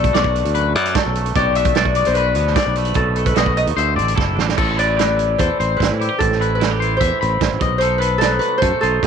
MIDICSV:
0, 0, Header, 1, 6, 480
1, 0, Start_track
1, 0, Tempo, 403769
1, 1606, Time_signature, 4, 2, 24, 8
1, 10781, End_track
2, 0, Start_track
2, 0, Title_t, "Harp"
2, 0, Program_c, 0, 46
2, 0, Note_on_c, 0, 74, 70
2, 0, Note_on_c, 0, 76, 88
2, 1499, Note_off_c, 0, 76, 0
2, 1617, Note_off_c, 0, 74, 0
2, 1622, Note_on_c, 0, 74, 90
2, 1854, Note_on_c, 0, 76, 85
2, 2089, Note_off_c, 0, 74, 0
2, 2093, Note_on_c, 0, 74, 91
2, 2455, Note_on_c, 0, 72, 80
2, 2545, Note_on_c, 0, 71, 86
2, 2616, Note_off_c, 0, 72, 0
2, 3517, Note_on_c, 0, 69, 76
2, 3874, Note_off_c, 0, 71, 0
2, 3879, Note_on_c, 0, 71, 75
2, 3902, Note_off_c, 0, 76, 0
2, 4004, Note_off_c, 0, 71, 0
2, 4009, Note_on_c, 0, 71, 80
2, 4244, Note_on_c, 0, 75, 84
2, 4315, Note_off_c, 0, 74, 0
2, 4315, Note_off_c, 0, 75, 0
2, 4499, Note_on_c, 0, 76, 70
2, 5694, Note_on_c, 0, 74, 72
2, 6128, Note_off_c, 0, 69, 0
2, 6400, Note_on_c, 0, 72, 80
2, 6472, Note_off_c, 0, 71, 0
2, 6548, Note_off_c, 0, 76, 0
2, 6854, Note_on_c, 0, 71, 70
2, 6925, Note_off_c, 0, 72, 0
2, 7353, Note_on_c, 0, 69, 67
2, 7783, Note_off_c, 0, 71, 0
2, 7788, Note_on_c, 0, 71, 72
2, 7889, Note_off_c, 0, 74, 0
2, 8282, Note_on_c, 0, 72, 71
2, 8354, Note_off_c, 0, 71, 0
2, 9246, Note_off_c, 0, 72, 0
2, 9251, Note_on_c, 0, 72, 86
2, 9487, Note_on_c, 0, 71, 75
2, 9559, Note_off_c, 0, 72, 0
2, 9720, Note_off_c, 0, 69, 0
2, 9725, Note_on_c, 0, 69, 83
2, 9970, Note_off_c, 0, 71, 0
2, 9975, Note_on_c, 0, 71, 85
2, 10197, Note_on_c, 0, 72, 85
2, 10268, Note_off_c, 0, 71, 0
2, 10466, Note_off_c, 0, 69, 0
2, 10470, Note_on_c, 0, 69, 89
2, 10781, Note_off_c, 0, 69, 0
2, 10781, Note_off_c, 0, 72, 0
2, 10781, End_track
3, 0, Start_track
3, 0, Title_t, "Clean electric guitar"
3, 0, Program_c, 1, 27
3, 0, Note_on_c, 1, 69, 74
3, 168, Note_off_c, 1, 69, 0
3, 170, Note_on_c, 1, 74, 70
3, 646, Note_off_c, 1, 74, 0
3, 651, Note_on_c, 1, 71, 92
3, 889, Note_off_c, 1, 71, 0
3, 897, Note_on_c, 1, 74, 70
3, 1131, Note_on_c, 1, 69, 78
3, 1132, Note_off_c, 1, 74, 0
3, 1608, Note_off_c, 1, 69, 0
3, 1618, Note_on_c, 1, 67, 86
3, 1852, Note_off_c, 1, 67, 0
3, 1861, Note_on_c, 1, 76, 77
3, 2327, Note_off_c, 1, 76, 0
3, 2332, Note_on_c, 1, 74, 75
3, 2568, Note_off_c, 1, 74, 0
3, 2580, Note_on_c, 1, 71, 84
3, 3035, Note_off_c, 1, 71, 0
3, 3040, Note_on_c, 1, 74, 74
3, 3286, Note_off_c, 1, 74, 0
3, 3286, Note_on_c, 1, 71, 70
3, 3764, Note_off_c, 1, 71, 0
3, 3770, Note_on_c, 1, 69, 70
3, 4006, Note_off_c, 1, 69, 0
3, 4006, Note_on_c, 1, 75, 72
3, 4472, Note_off_c, 1, 75, 0
3, 4477, Note_on_c, 1, 72, 94
3, 4706, Note_off_c, 1, 72, 0
3, 4710, Note_on_c, 1, 74, 68
3, 4944, Note_off_c, 1, 74, 0
3, 4949, Note_on_c, 1, 69, 66
3, 5423, Note_off_c, 1, 69, 0
3, 5438, Note_on_c, 1, 69, 80
3, 5684, Note_off_c, 1, 69, 0
3, 5684, Note_on_c, 1, 71, 61
3, 5920, Note_off_c, 1, 71, 0
3, 5934, Note_on_c, 1, 71, 65
3, 6409, Note_off_c, 1, 71, 0
3, 6421, Note_on_c, 1, 69, 83
3, 6652, Note_off_c, 1, 69, 0
3, 6657, Note_on_c, 1, 72, 65
3, 7131, Note_off_c, 1, 72, 0
3, 7146, Note_on_c, 1, 67, 63
3, 7616, Note_off_c, 1, 67, 0
3, 7621, Note_on_c, 1, 71, 67
3, 8080, Note_off_c, 1, 71, 0
3, 8084, Note_on_c, 1, 72, 65
3, 8322, Note_off_c, 1, 72, 0
3, 8327, Note_on_c, 1, 76, 89
3, 8565, Note_off_c, 1, 76, 0
3, 8570, Note_on_c, 1, 83, 66
3, 9050, Note_off_c, 1, 83, 0
3, 9057, Note_on_c, 1, 75, 72
3, 9293, Note_off_c, 1, 75, 0
3, 9298, Note_on_c, 1, 69, 91
3, 9517, Note_off_c, 1, 69, 0
3, 9522, Note_on_c, 1, 71, 68
3, 9751, Note_off_c, 1, 71, 0
3, 9766, Note_on_c, 1, 71, 76
3, 10249, Note_off_c, 1, 71, 0
3, 10253, Note_on_c, 1, 69, 92
3, 10486, Note_off_c, 1, 69, 0
3, 10491, Note_on_c, 1, 72, 66
3, 10781, Note_off_c, 1, 72, 0
3, 10781, End_track
4, 0, Start_track
4, 0, Title_t, "Clean electric guitar"
4, 0, Program_c, 2, 27
4, 0, Note_on_c, 2, 47, 78
4, 0, Note_on_c, 2, 57, 65
4, 0, Note_on_c, 2, 62, 57
4, 157, Note_on_c, 2, 66, 58
4, 414, Note_off_c, 2, 62, 0
4, 419, Note_on_c, 2, 62, 57
4, 640, Note_off_c, 2, 47, 0
4, 656, Note_on_c, 2, 42, 67
4, 891, Note_off_c, 2, 62, 0
4, 896, Note_on_c, 2, 59, 57
4, 1036, Note_off_c, 2, 59, 0
4, 1036, Note_on_c, 2, 62, 43
4, 1147, Note_on_c, 2, 54, 65
4, 1375, Note_off_c, 2, 57, 0
4, 1380, Note_on_c, 2, 57, 59
4, 1581, Note_off_c, 2, 42, 0
4, 1615, Note_on_c, 2, 47, 75
4, 1621, Note_off_c, 2, 62, 0
4, 1625, Note_off_c, 2, 54, 0
4, 1629, Note_on_c, 2, 55, 59
4, 1633, Note_off_c, 2, 57, 0
4, 1638, Note_on_c, 2, 57, 55
4, 1649, Note_on_c, 2, 59, 65
4, 1653, Note_off_c, 2, 66, 0
4, 1657, Note_on_c, 2, 66, 71
4, 1846, Note_off_c, 2, 57, 0
4, 1851, Note_on_c, 2, 57, 63
4, 2095, Note_off_c, 2, 66, 0
4, 2099, Note_on_c, 2, 66, 67
4, 2341, Note_off_c, 2, 59, 0
4, 2355, Note_on_c, 2, 59, 54
4, 2556, Note_off_c, 2, 47, 0
4, 2570, Note_on_c, 2, 47, 57
4, 2787, Note_off_c, 2, 59, 0
4, 2802, Note_on_c, 2, 59, 60
4, 3024, Note_off_c, 2, 55, 0
4, 3038, Note_on_c, 2, 55, 60
4, 3289, Note_off_c, 2, 57, 0
4, 3294, Note_on_c, 2, 57, 62
4, 3486, Note_off_c, 2, 47, 0
4, 3492, Note_off_c, 2, 55, 0
4, 3501, Note_off_c, 2, 66, 0
4, 3501, Note_on_c, 2, 47, 80
4, 3736, Note_off_c, 2, 57, 0
4, 3750, Note_on_c, 2, 57, 58
4, 3981, Note_on_c, 2, 66, 61
4, 4230, Note_off_c, 2, 59, 0
4, 4235, Note_on_c, 2, 63, 51
4, 4442, Note_off_c, 2, 66, 0
4, 4449, Note_off_c, 2, 63, 0
4, 4467, Note_off_c, 2, 47, 0
4, 4471, Note_on_c, 2, 50, 68
4, 4708, Note_off_c, 2, 57, 0
4, 4713, Note_on_c, 2, 60, 57
4, 4936, Note_on_c, 2, 64, 63
4, 5179, Note_on_c, 2, 62, 57
4, 5402, Note_off_c, 2, 62, 0
4, 5405, Note_on_c, 2, 45, 75
4, 5408, Note_off_c, 2, 50, 0
4, 5409, Note_off_c, 2, 60, 0
4, 5650, Note_off_c, 2, 64, 0
4, 5664, Note_on_c, 2, 64, 58
4, 5905, Note_on_c, 2, 67, 61
4, 6139, Note_off_c, 2, 64, 0
4, 6144, Note_on_c, 2, 64, 53
4, 6403, Note_on_c, 2, 52, 56
4, 6651, Note_on_c, 2, 60, 53
4, 6874, Note_off_c, 2, 64, 0
4, 6886, Note_on_c, 2, 64, 56
4, 7114, Note_off_c, 2, 64, 0
4, 7116, Note_off_c, 2, 67, 0
4, 7129, Note_on_c, 2, 64, 58
4, 7236, Note_off_c, 2, 64, 0
4, 7236, Note_on_c, 2, 67, 47
4, 7317, Note_off_c, 2, 45, 0
4, 7354, Note_on_c, 2, 45, 72
4, 7361, Note_off_c, 2, 67, 0
4, 7615, Note_on_c, 2, 64, 57
4, 7835, Note_off_c, 2, 64, 0
4, 7849, Note_on_c, 2, 64, 66
4, 7976, Note_off_c, 2, 64, 0
4, 7976, Note_on_c, 2, 67, 55
4, 8124, Note_on_c, 2, 64, 53
4, 8320, Note_off_c, 2, 52, 0
4, 8334, Note_on_c, 2, 52, 59
4, 8579, Note_off_c, 2, 60, 0
4, 8584, Note_on_c, 2, 60, 52
4, 8790, Note_off_c, 2, 64, 0
4, 8804, Note_on_c, 2, 64, 54
4, 9014, Note_off_c, 2, 45, 0
4, 9018, Note_off_c, 2, 64, 0
4, 9028, Note_on_c, 2, 47, 69
4, 9052, Note_off_c, 2, 52, 0
4, 9053, Note_off_c, 2, 67, 0
4, 9063, Note_off_c, 2, 60, 0
4, 9272, Note_on_c, 2, 63, 57
4, 9510, Note_on_c, 2, 69, 65
4, 9733, Note_off_c, 2, 63, 0
4, 9738, Note_on_c, 2, 63, 59
4, 9995, Note_on_c, 2, 54, 63
4, 10247, Note_on_c, 2, 57, 58
4, 10476, Note_off_c, 2, 63, 0
4, 10492, Note_on_c, 2, 63, 56
4, 10721, Note_off_c, 2, 63, 0
4, 10735, Note_on_c, 2, 63, 56
4, 10781, Note_off_c, 2, 47, 0
4, 10781, Note_off_c, 2, 54, 0
4, 10781, Note_off_c, 2, 57, 0
4, 10781, Note_off_c, 2, 63, 0
4, 10781, Note_off_c, 2, 69, 0
4, 10781, End_track
5, 0, Start_track
5, 0, Title_t, "Fingered electric bass"
5, 0, Program_c, 3, 33
5, 0, Note_on_c, 3, 35, 97
5, 131, Note_off_c, 3, 35, 0
5, 173, Note_on_c, 3, 35, 87
5, 501, Note_off_c, 3, 35, 0
5, 537, Note_on_c, 3, 38, 88
5, 899, Note_off_c, 3, 38, 0
5, 899, Note_on_c, 3, 42, 77
5, 1114, Note_off_c, 3, 42, 0
5, 1262, Note_on_c, 3, 35, 74
5, 1585, Note_off_c, 3, 35, 0
5, 1612, Note_on_c, 3, 35, 100
5, 2049, Note_off_c, 3, 35, 0
5, 2101, Note_on_c, 3, 35, 84
5, 2424, Note_off_c, 3, 35, 0
5, 2462, Note_on_c, 3, 35, 87
5, 2817, Note_off_c, 3, 35, 0
5, 2817, Note_on_c, 3, 38, 82
5, 3031, Note_off_c, 3, 38, 0
5, 3168, Note_on_c, 3, 35, 80
5, 3496, Note_off_c, 3, 35, 0
5, 3517, Note_on_c, 3, 35, 101
5, 3960, Note_off_c, 3, 35, 0
5, 4005, Note_on_c, 3, 35, 87
5, 4334, Note_off_c, 3, 35, 0
5, 4360, Note_on_c, 3, 39, 78
5, 4471, Note_off_c, 3, 39, 0
5, 4476, Note_on_c, 3, 38, 83
5, 4706, Note_on_c, 3, 33, 74
5, 4724, Note_off_c, 3, 38, 0
5, 4934, Note_off_c, 3, 33, 0
5, 4973, Note_on_c, 3, 30, 75
5, 5184, Note_off_c, 3, 30, 0
5, 5192, Note_on_c, 3, 33, 81
5, 5412, Note_off_c, 3, 33, 0
5, 5445, Note_on_c, 3, 33, 98
5, 6357, Note_off_c, 3, 33, 0
5, 6417, Note_on_c, 3, 40, 83
5, 6521, Note_off_c, 3, 40, 0
5, 6656, Note_on_c, 3, 33, 87
5, 6871, Note_off_c, 3, 33, 0
5, 6896, Note_on_c, 3, 33, 92
5, 7001, Note_off_c, 3, 33, 0
5, 7018, Note_on_c, 3, 45, 78
5, 7232, Note_off_c, 3, 45, 0
5, 7378, Note_on_c, 3, 33, 111
5, 8286, Note_off_c, 3, 33, 0
5, 8338, Note_on_c, 3, 40, 84
5, 8443, Note_off_c, 3, 40, 0
5, 8591, Note_on_c, 3, 33, 87
5, 8801, Note_off_c, 3, 33, 0
5, 8810, Note_on_c, 3, 33, 95
5, 8919, Note_off_c, 3, 33, 0
5, 8947, Note_on_c, 3, 33, 78
5, 9043, Note_off_c, 3, 33, 0
5, 9050, Note_on_c, 3, 35, 83
5, 9964, Note_off_c, 3, 35, 0
5, 10253, Note_on_c, 3, 42, 90
5, 10363, Note_off_c, 3, 42, 0
5, 10497, Note_on_c, 3, 35, 88
5, 10716, Note_off_c, 3, 35, 0
5, 10734, Note_on_c, 3, 35, 101
5, 10781, Note_off_c, 3, 35, 0
5, 10781, End_track
6, 0, Start_track
6, 0, Title_t, "Drums"
6, 49, Note_on_c, 9, 36, 90
6, 49, Note_on_c, 9, 42, 60
6, 168, Note_off_c, 9, 36, 0
6, 168, Note_off_c, 9, 42, 0
6, 170, Note_on_c, 9, 42, 58
6, 181, Note_on_c, 9, 38, 107
6, 289, Note_off_c, 9, 42, 0
6, 290, Note_on_c, 9, 36, 72
6, 300, Note_off_c, 9, 38, 0
6, 409, Note_off_c, 9, 36, 0
6, 421, Note_on_c, 9, 42, 54
6, 538, Note_off_c, 9, 42, 0
6, 538, Note_on_c, 9, 42, 57
6, 650, Note_off_c, 9, 42, 0
6, 650, Note_on_c, 9, 42, 57
6, 769, Note_off_c, 9, 42, 0
6, 896, Note_on_c, 9, 42, 55
6, 1015, Note_off_c, 9, 42, 0
6, 1016, Note_on_c, 9, 42, 64
6, 1125, Note_off_c, 9, 42, 0
6, 1125, Note_on_c, 9, 42, 60
6, 1132, Note_on_c, 9, 36, 106
6, 1136, Note_on_c, 9, 38, 111
6, 1244, Note_off_c, 9, 42, 0
6, 1251, Note_off_c, 9, 36, 0
6, 1255, Note_off_c, 9, 38, 0
6, 1371, Note_on_c, 9, 42, 64
6, 1490, Note_off_c, 9, 42, 0
6, 1495, Note_on_c, 9, 42, 55
6, 1607, Note_off_c, 9, 42, 0
6, 1607, Note_on_c, 9, 42, 58
6, 1612, Note_on_c, 9, 36, 106
6, 1726, Note_off_c, 9, 42, 0
6, 1731, Note_off_c, 9, 36, 0
6, 1844, Note_on_c, 9, 42, 59
6, 1959, Note_off_c, 9, 42, 0
6, 1959, Note_on_c, 9, 42, 68
6, 1966, Note_on_c, 9, 36, 98
6, 2078, Note_off_c, 9, 42, 0
6, 2078, Note_on_c, 9, 42, 61
6, 2085, Note_off_c, 9, 36, 0
6, 2089, Note_on_c, 9, 38, 109
6, 2197, Note_off_c, 9, 42, 0
6, 2205, Note_on_c, 9, 36, 67
6, 2207, Note_off_c, 9, 38, 0
6, 2315, Note_on_c, 9, 42, 63
6, 2324, Note_off_c, 9, 36, 0
6, 2434, Note_off_c, 9, 42, 0
6, 2436, Note_on_c, 9, 42, 62
6, 2553, Note_off_c, 9, 42, 0
6, 2553, Note_on_c, 9, 42, 63
6, 2672, Note_off_c, 9, 42, 0
6, 2790, Note_on_c, 9, 42, 57
6, 2909, Note_off_c, 9, 42, 0
6, 2936, Note_on_c, 9, 38, 31
6, 3042, Note_on_c, 9, 36, 112
6, 3042, Note_on_c, 9, 42, 68
6, 3053, Note_off_c, 9, 38, 0
6, 3053, Note_on_c, 9, 38, 108
6, 3161, Note_off_c, 9, 36, 0
6, 3161, Note_off_c, 9, 42, 0
6, 3172, Note_off_c, 9, 38, 0
6, 3274, Note_on_c, 9, 42, 57
6, 3386, Note_off_c, 9, 42, 0
6, 3386, Note_on_c, 9, 42, 57
6, 3496, Note_off_c, 9, 42, 0
6, 3496, Note_on_c, 9, 42, 56
6, 3511, Note_on_c, 9, 36, 105
6, 3615, Note_off_c, 9, 42, 0
6, 3630, Note_off_c, 9, 36, 0
6, 3751, Note_on_c, 9, 42, 55
6, 3870, Note_off_c, 9, 42, 0
6, 3876, Note_on_c, 9, 36, 89
6, 3882, Note_on_c, 9, 42, 63
6, 3989, Note_off_c, 9, 42, 0
6, 3989, Note_on_c, 9, 42, 60
6, 3995, Note_off_c, 9, 36, 0
6, 4000, Note_on_c, 9, 38, 111
6, 4108, Note_off_c, 9, 42, 0
6, 4115, Note_on_c, 9, 36, 73
6, 4119, Note_off_c, 9, 38, 0
6, 4234, Note_off_c, 9, 36, 0
6, 4243, Note_on_c, 9, 42, 59
6, 4362, Note_off_c, 9, 42, 0
6, 4365, Note_on_c, 9, 42, 59
6, 4484, Note_off_c, 9, 42, 0
6, 4492, Note_on_c, 9, 42, 59
6, 4611, Note_off_c, 9, 42, 0
6, 4738, Note_on_c, 9, 42, 56
6, 4851, Note_off_c, 9, 42, 0
6, 4851, Note_on_c, 9, 42, 64
6, 4964, Note_on_c, 9, 36, 109
6, 4970, Note_off_c, 9, 42, 0
6, 4985, Note_on_c, 9, 38, 57
6, 5083, Note_off_c, 9, 36, 0
6, 5104, Note_off_c, 9, 38, 0
6, 5216, Note_on_c, 9, 38, 82
6, 5333, Note_off_c, 9, 38, 0
6, 5333, Note_on_c, 9, 38, 70
6, 5444, Note_on_c, 9, 36, 102
6, 5450, Note_on_c, 9, 49, 86
6, 5452, Note_off_c, 9, 38, 0
6, 5562, Note_off_c, 9, 36, 0
6, 5568, Note_off_c, 9, 49, 0
6, 5689, Note_on_c, 9, 42, 66
6, 5808, Note_off_c, 9, 42, 0
6, 5931, Note_on_c, 9, 42, 80
6, 5942, Note_on_c, 9, 38, 97
6, 6050, Note_off_c, 9, 42, 0
6, 6061, Note_off_c, 9, 38, 0
6, 6168, Note_on_c, 9, 42, 57
6, 6287, Note_off_c, 9, 42, 0
6, 6409, Note_on_c, 9, 42, 85
6, 6412, Note_on_c, 9, 36, 109
6, 6528, Note_off_c, 9, 42, 0
6, 6531, Note_off_c, 9, 36, 0
6, 6661, Note_on_c, 9, 42, 56
6, 6780, Note_off_c, 9, 42, 0
6, 6898, Note_on_c, 9, 36, 69
6, 6915, Note_on_c, 9, 42, 85
6, 6926, Note_on_c, 9, 38, 105
6, 7017, Note_off_c, 9, 36, 0
6, 7034, Note_off_c, 9, 42, 0
6, 7045, Note_off_c, 9, 38, 0
6, 7148, Note_on_c, 9, 42, 56
6, 7267, Note_off_c, 9, 42, 0
6, 7376, Note_on_c, 9, 36, 87
6, 7377, Note_on_c, 9, 42, 77
6, 7495, Note_off_c, 9, 36, 0
6, 7496, Note_off_c, 9, 42, 0
6, 7514, Note_on_c, 9, 38, 29
6, 7629, Note_on_c, 9, 42, 56
6, 7633, Note_off_c, 9, 38, 0
6, 7748, Note_off_c, 9, 42, 0
6, 7859, Note_on_c, 9, 42, 74
6, 7869, Note_on_c, 9, 38, 106
6, 7977, Note_off_c, 9, 42, 0
6, 7988, Note_off_c, 9, 38, 0
6, 8106, Note_on_c, 9, 42, 50
6, 8225, Note_off_c, 9, 42, 0
6, 8332, Note_on_c, 9, 36, 100
6, 8333, Note_on_c, 9, 42, 73
6, 8451, Note_off_c, 9, 36, 0
6, 8452, Note_off_c, 9, 42, 0
6, 8585, Note_on_c, 9, 42, 53
6, 8704, Note_off_c, 9, 42, 0
6, 8809, Note_on_c, 9, 42, 75
6, 8810, Note_on_c, 9, 36, 72
6, 8819, Note_on_c, 9, 38, 101
6, 8928, Note_off_c, 9, 42, 0
6, 8929, Note_off_c, 9, 36, 0
6, 8938, Note_off_c, 9, 38, 0
6, 9045, Note_on_c, 9, 42, 61
6, 9046, Note_on_c, 9, 36, 96
6, 9164, Note_off_c, 9, 42, 0
6, 9165, Note_off_c, 9, 36, 0
6, 9279, Note_on_c, 9, 42, 80
6, 9398, Note_off_c, 9, 42, 0
6, 9527, Note_on_c, 9, 42, 67
6, 9646, Note_off_c, 9, 42, 0
6, 9759, Note_on_c, 9, 42, 81
6, 9770, Note_on_c, 9, 38, 97
6, 9878, Note_off_c, 9, 42, 0
6, 9889, Note_off_c, 9, 38, 0
6, 10001, Note_on_c, 9, 42, 59
6, 10120, Note_off_c, 9, 42, 0
6, 10247, Note_on_c, 9, 42, 84
6, 10248, Note_on_c, 9, 36, 104
6, 10365, Note_off_c, 9, 42, 0
6, 10367, Note_off_c, 9, 36, 0
6, 10497, Note_on_c, 9, 42, 61
6, 10616, Note_off_c, 9, 42, 0
6, 10733, Note_on_c, 9, 36, 76
6, 10742, Note_on_c, 9, 42, 86
6, 10781, Note_off_c, 9, 36, 0
6, 10781, Note_off_c, 9, 42, 0
6, 10781, End_track
0, 0, End_of_file